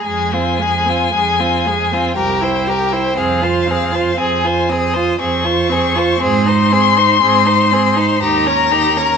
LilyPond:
<<
  \new Staff \with { instrumentName = "Violin" } { \time 3/4 \key f \minor \tempo 4 = 59 aes''2 g''4 | f''4 aes''8 ees'''8 des'''4 | c'''2 bes''4 | }
  \new Staff \with { instrumentName = "Violin" } { \time 3/4 \key f \minor aes'16 f'16 aes'16 f'16 aes'16 f'16 aes'16 f'16 bes'16 c''16 bes'16 c''16 | aes'16 c''16 aes'16 c''16 aes'16 c''16 aes'16 c''16 aes'16 c''16 aes'16 c''16 | aes'16 c''16 aes'16 c''16 aes'16 c''16 aes'16 c''16 g'16 bes'16 g'16 bes'16 | }
  \new Staff \with { instrumentName = "Viola" } { \time 3/4 \key f \minor aes16 c'16 aes16 c'16 aes16 c'16 aes16 c'16 g'16 e'16 g'16 e'16 | c'16 f'16 c'16 f'16 c'16 f'16 c'16 f'16 c'16 f'16 c'16 f'16 | c'16 ees'16 c'16 ees'16 c'16 ees'16 c'16 ees'16 ees'16 des'16 ees'16 des'16 | }
  \new Staff \with { instrumentName = "Cello" } { \clef bass \time 3/4 \key f \minor f,4 f,4 c,4 | f,4 f,4 f,4 | aes,4 aes,4 ees,4 | }
>>